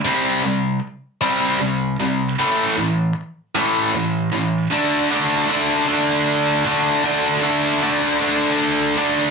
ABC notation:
X:1
M:6/8
L:1/8
Q:3/8=52
K:Ddor
V:1 name="Distorted electric guitar" clef=bass
[C,G,C] [C,G,] z [C,G,C] [C,G,] [C,G,] | [A,,E,A,] [A,,E,] z [A,,E,A,] [A,,E,] [A,,E,] | [D,A,D] [D,A,D] [D,A,D] [D,A,D]2 [D,A,D] | [D,A,D] [D,A,D] [D,A,D] [D,A,D]2 [D,A,D] |]